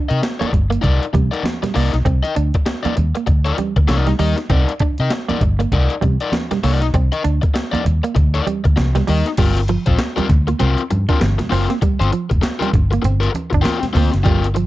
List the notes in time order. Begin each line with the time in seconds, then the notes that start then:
0.09 C3 D#4 A#4 D#5, closed hi-hat
0.22 muted overdriven electric guitar stroke, snare, closed hi-hat, muted conga
0.40 A#3 D#4 A#4 D5, muted fingered electric bass stroke, closed hi-hat, muted conga, high conga
0.53 G1, muted overdriven electric guitar stroke, muted clean electric guitar stroke, kick, closed hi-hat, low conga
0.70 A#3, muted overdriven electric guitar stroke, closed hi-hat
0.82 C2 D#4 A#4 D5, kick, closed hi-hat, muted conga, low conga
1.03 closed hi-hat
1.13 C3 G3, muted overdriven electric guitar stroke, kick, closed hi-hat, high conga
1.31 D#4 A#4 D5, closed hi-hat
1.43 muted clean electric guitar stroke, muted overdriven electric guitar stroke, snare, closed hi-hat, muted conga, high conga
1.63 G3, muted overdriven electric guitar stroke, snare, closed hi-hat, muted conga, low conga
1.74 C2 A#3 D#4 A#4 D5, open hi-hat
1.93 B1, muted overdriven electric guitar stroke, snare, closed hi-hat
2.05 C2 C4, muted overdriven electric guitar stroke, kick, closed hi-hat
2.23 D#4 A#4 D#5, muted clean electric guitar stroke, closed hi-hat, muted conga
2.36 D2 D4, muted overdriven electric guitar stroke, closed hi-hat
2.54 muted overdriven electric guitar stroke, kick, closed hi-hat
2.66 muted overdriven electric guitar stroke, snare, closed hi-hat, muted conga
2.83 A#3 D#4 A#4 D5, muted fingered electric bass stroke, closed hi-hat, high conga
2.95 D#2, muted overdriven electric guitar stroke, muted clean electric guitar stroke, closed hi-hat, low conga
3.15 A#3, muted overdriven electric guitar stroke, closed hi-hat
3.27 D2, muted overdriven electric guitar stroke, kick, closed hi-hat, muted conga, low conga
3.45 D#4 A#4 D5, closed hi-hat
3.58 G3, muted overdriven electric guitar stroke, closed hi-hat, high conga
3.76 D2, muted overdriven electric guitar stroke, kick, closed hi-hat
3.88 C2 D#4 A#4 D5, muted clean electric guitar stroke, snare, closed hi-hat, muted conga, high conga
4.07 G3, muted overdriven electric guitar stroke, snare, closed hi-hat, muted conga, low conga
4.19 D#2 G3 D#4 A#4 D#5, open hi-hat
4.37 muted overdriven electric guitar stroke, snare, closed hi-hat
4.50 C2 C4 D#4 A#4 D5, kick, closed hi-hat
4.68 muted clean electric guitar stroke, closed hi-hat, muted conga
4.79 D4, muted fingered electric bass stroke, muted overdriven electric guitar stroke, kick, closed hi-hat
4.98 C3 D#4 A#4 D#5, closed hi-hat
5.10 muted overdriven electric guitar stroke, snare, closed hi-hat, muted conga
5.28 A#3 D#4 A#4 D5, muted fingered electric bass stroke, closed hi-hat, muted conga, high conga
5.41 G1, muted clean electric guitar stroke, muted overdriven electric guitar stroke, kick, closed hi-hat, low conga
5.59 A#3, muted overdriven electric guitar stroke, closed hi-hat
5.72 C2 D#4 A#4 D5, kick, closed hi-hat, low conga
5.90 closed hi-hat, muted conga
6.01 C3 G3, muted overdriven electric guitar stroke, kick, closed hi-hat, high conga
6.20 D#4 A#4 D5, closed hi-hat
6.32 muted clean electric guitar stroke, muted overdriven electric guitar stroke, snare, closed hi-hat, muted conga, high conga
6.51 G3, muted overdriven electric guitar stroke, snare, closed hi-hat, muted conga, low conga
6.63 C2 A#3 D#4 A#4 D5, open hi-hat
6.81 B1, muted overdriven electric guitar stroke, snare, closed hi-hat
6.94 C2 C4, muted overdriven electric guitar stroke, kick, closed hi-hat, muted conga
7.12 D#4 A#4 D#5, muted clean electric guitar stroke, closed hi-hat, muted conga
7.24 D2 D4, muted overdriven electric guitar stroke, closed hi-hat
7.42 muted overdriven electric guitar stroke, kick, closed hi-hat
7.54 muted overdriven electric guitar stroke, snare, closed hi-hat
7.72 A#3 D#4 A#4 D5, muted fingered electric bass stroke, closed hi-hat, muted conga, high conga
7.84 D#2, muted overdriven electric guitar stroke, muted clean electric guitar stroke, closed hi-hat, low conga
8.04 A#3, muted overdriven electric guitar stroke, closed hi-hat
8.15 D2, muted overdriven electric guitar stroke, kick, closed hi-hat, muted conga, low conga
8.34 D#4 A#4 D5, closed hi-hat, muted conga
8.46 G3, muted overdriven electric guitar stroke, closed hi-hat, high conga
8.64 D2, muted overdriven electric guitar stroke, kick, closed hi-hat
8.76 C2, muted overdriven electric guitar stroke, muted clean electric guitar stroke, snare, closed hi-hat, muted conga, high conga
8.95 G3, muted overdriven electric guitar stroke, snare, closed hi-hat, muted conga, low conga
9.07 D#2 G3 D#4 A#4 D#5, open hi-hat
9.26 muted overdriven electric guitar stroke, snare, closed hi-hat
9.37 G1 G3 C4 F4 A#4, kick, closed hi-hat, crash, muted conga
9.57 muted clean electric guitar stroke, closed hi-hat, muted conga
9.68 F3, muted overdriven electric guitar stroke, closed hi-hat
9.86 A#1 C4 F4 C5, kick, closed hi-hat
9.99 muted overdriven electric guitar stroke, snare, clap, closed hi-hat, muted conga
10.16 G3 C4 F4 A#4, muted fingered electric bass stroke, closed hi-hat, muted conga, high conga
10.29 D2, muted overdriven electric guitar stroke, muted clean electric guitar stroke, kick, clap, closed hi-hat, low conga
10.47 A#3, muted overdriven electric guitar stroke, closed hi-hat
10.60 C2 C4 F4 A#4, closed hi-hat, muted conga, low conga
10.78 closed hi-hat, muted conga
10.91 G2, muted clean electric guitar stroke, muted overdriven electric guitar stroke, closed hi-hat, high conga
11.09 C4 D4 F4 A#4, kick, closed hi-hat
11.20 G1, muted overdriven electric guitar stroke, muted clean electric guitar stroke, snare, clap, closed hi-hat, muted conga, high conga
11.38 muted overdriven electric guitar stroke, snare, closed hi-hat, muted conga, high conga, low conga
11.50 F#1 C4 F4 A#4, open hi-hat
11.70 A#3, muted overdriven electric guitar stroke, snare, closed hi-hat
11.82 G3, muted overdriven electric guitar stroke, kick, closed hi-hat, muted conga
12.00 G1 C4 F4 C5, muted clean electric guitar stroke, closed hi-hat, muted conga
12.12 F3, muted overdriven electric guitar stroke, closed hi-hat
12.30 F1, muted overdriven electric guitar stroke, kick, closed hi-hat
12.42 muted overdriven electric guitar stroke, snare, clap, closed hi-hat, muted conga
12.59 G3 C4 F4 A#4, closed hi-hat, high conga
12.71 G1, muted overdriven electric guitar stroke, kick, closed hi-hat, low conga
12.75 muted clean electric guitar stroke
12.91 A#3, muted overdriven electric guitar stroke, closed hi-hat
13.02 G1 C4, muted overdriven electric guitar stroke, closed hi-hat, muted conga, low conga
13.20 C4 F4 A#4, closed hi-hat, muted conga
13.32 muted overdriven electric guitar stroke, muted clean electric guitar stroke, closed hi-hat, high conga
13.50 G1, muted overdriven electric guitar stroke, kick, closed hi-hat
13.54 D4
13.62 C4 F4 A#4, snare, clap, closed hi-hat, muted conga, high conga
13.80 muted overdriven electric guitar stroke, snare, closed hi-hat, muted conga, high conga, low conga
13.93 D2 A#3 C4 F4 C5, kick, open hi-hat
14.12 F#1, muted overdriven electric guitar stroke, snare, closed hi-hat
14.24 G1 G3 C4 F4 A#4, kick, closed hi-hat, muted conga
14.44 muted clean electric guitar stroke, closed hi-hat, muted conga
14.54 F3, muted overdriven electric guitar stroke, closed hi-hat